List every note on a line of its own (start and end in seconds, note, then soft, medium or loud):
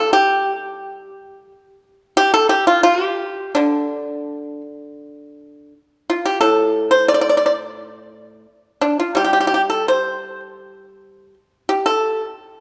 0.00 0.12 C3 soft
0.00 1.52 G3 soft
0.00 0.12 A4 medium
0.13 2.14 G4 medium
2.17 2.33 G4 loud
2.34 2.49 A4 medium
2.49 2.66 G4 medium
2.67 2.83 F4 medium
2.83 3.03 F4 medium
3.03 3.51 G4 medium
3.55 5.73 D3 soft
3.55 4.61 D4 medium
6.10 6.24 F4 medium
6.25 6.40 G4 medium
6.41 8.45 A2 medium
6.41 6.88 A4 medium
6.91 7.07 C5 medium
7.08 7.13 D5 medium
7.14 7.20 D5 medium
7.21 7.28 D5 medium
7.29 7.36 D5 medium
7.37 7.44 D5 medium
7.46 7.52 D5 medium
8.81 8.97 D4 medium
9.00 9.15 F4 soft
9.15 11.34 G3 soft
9.15 9.23 G4 medium
9.24 9.31 G4 soft
9.33 9.39 G4 soft
9.40 9.46 G4 soft
9.47 9.53 G4 medium
9.54 9.61 G4 soft
9.70 9.87 A4 medium
9.88 10.40 C5 medium
11.69 11.86 G4 medium
11.86 12.20 A4 medium